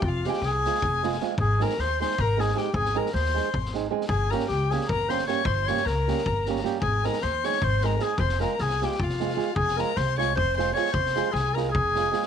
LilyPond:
<<
  \new Staff \with { instrumentName = "Violin" } { \time 7/8 \key f \minor \tempo 4 = 154 f''8 g''8 aes''2 r8 | aes''8 bes''8 c'''8 c'''8 bes''8 aes''8 g''8 | aes''8 bes''8 c'''4. r4 | aes''8 bes''8 g''8 aes''8 bes''8 c'''8 des'''8 |
c'''8 des'''8 bes''2 r8 | aes''8 bes''8 c'''8 des'''8 c'''8 bes''8 aes''8 | c'''8 bes''8 aes''8 g''8 f''4. | aes''8 bes''8 c'''8 des'''8 c'''8 c'''8 des'''8 |
c'''4 aes''8 bes''8 aes''4. | }
  \new Staff \with { instrumentName = "Clarinet" } { \time 7/8 \key f \minor f'8 g'8 aes'2 r8 | aes'8 bes'8 c''8 c''8 bes'8 aes'8 g'8 | aes'8 bes'8 c''4. r4 | aes'8 bes'8 g'8 aes'8 bes'8 c''8 des''8 |
c''8 des''8 bes'2 r8 | aes'8 bes'8 c''8 des''8 c''8 bes'8 aes'8 | c''8 bes'8 aes'8 g'8 f'4. | aes'8 bes'8 c''8 des''8 c''8 c''8 des''8 |
c''4 aes'8 bes'8 aes'4. | }
  \new Staff \with { instrumentName = "Nylon-string guitar" } { \time 7/8 \key f \minor r8 <aes c' f' aes'>8 r8 <aes c' f' aes'>8 r8 <aes c' f' aes'>8 <aes c' f' aes'>8 | r8 <aes c' ees' aes'>8 r8 <aes c' ees' aes'>8 r8 <aes c' ees' aes'>8 <aes c' ees' aes'>8 | r8 <aes c' ees' aes'>8 r8 <aes c' ees' aes'>8 r8 <aes c' ees' aes'>8 <aes c' ees' aes'>8 | r8 <g bes des' g'>8 r8 <g bes des' g'>8 r8 <g bes des' g'>8 <g bes des' g'>8 |
r8 <g bes des' g'>8 r8 <g bes des' g'>8 r8 <g bes des' g'>8 <g bes des' g'>8 | r8 <aes c' ees' aes'>8 r8 <aes c' ees' aes'>8 r8 <aes c' ees' aes'>8 <aes c' ees' aes'>8 | r8 <aes c' f' aes'>8 r8 <aes c' f' aes'>8 r8 <aes c' f' aes'>8 <aes c' f' aes'>8 | r8 <aes c' f' aes'>8 r8 <aes c' f' aes'>8 r8 <aes c' f' aes'>8 <aes c' f' aes'>8 |
r8 <aes c' f' aes'>8 r8 <aes c' f' aes'>8 r8 <aes c' f' aes'>8 <aes c' f' aes'>8 | }
  \new Staff \with { instrumentName = "Upright bass" } { \clef bass \time 7/8 \key f \minor f,,4 c,4 f,,4. | aes,,4 ees,4 aes,,4. | aes,,4 ees,4 aes,,4. | g,,4 des,4 g,,4. |
g,,4 des,4 g,,4. | aes,,4 ees,4 aes,,4. | f,,4 c,4 f,,4. | f,,4 c,4 f,,4. |
f,,4 c,4 f,,4. | }
  \new DrumStaff \with { instrumentName = "Drums" } \drummode { \time 7/8 bd8 sn16 sn16 sn8 sn16 sn16 bd8 sn16 sn16 sn8 | bd8 sn16 sn16 sn8 sn16 sn16 bd8 sn16 sn16 sn8 | bd16 sn8 sn16 sn16 sn16 sn8 bd16 sn16 sn8. sn16 | bd8 sn16 sn16 sn8 sn16 sn16 bd8 sn16 sn16 sn8 |
bd8 sn16 sn16 sn8 sn16 sn16 bd8 sn16 sn16 sn8 | bd8 sn16 sn16 sn8 sn16 sn16 bd8 sn8 sn8 | bd16 sn16 sn8 sn16 sn16 sn16 sn16 bd16 sn16 sn16 sn16 sn8 | bd16 sn16 sn8 sn8 sn8 bd8 sn8 sn16 sn16 |
bd16 sn16 sn8 sn8 sn8 bd8 sn8 sn16 sn16 | }
>>